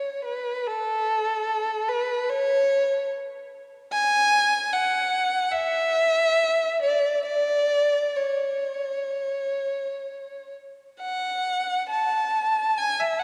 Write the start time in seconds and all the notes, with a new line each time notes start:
Already playing: C#5
0.25 B4
0.67 A4
1.88 B4
2.30 C#5
3.93 G#5
4.73 F#5
5.52 E5
6.82 D5
7.26 D5
8.16 C#5
11.01 F#5
11.90 A5
12.78 G#5
13.00 E5
13.19 F#5